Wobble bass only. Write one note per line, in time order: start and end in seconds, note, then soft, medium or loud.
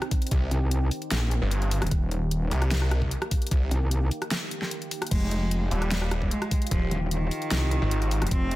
0.51 0.90 C2 medium
1.11 1.40 A#1 loud
1.82 1.90 D#1 loud
1.91 2.50 D#1 loud
3.71 4.10 C2 medium
5.11 5.70 F1 loud
6.91 7.30 D#1 medium
7.51 7.80 C2 loud
8.22 8.30 F1 loud
8.31 8.56 F1 loud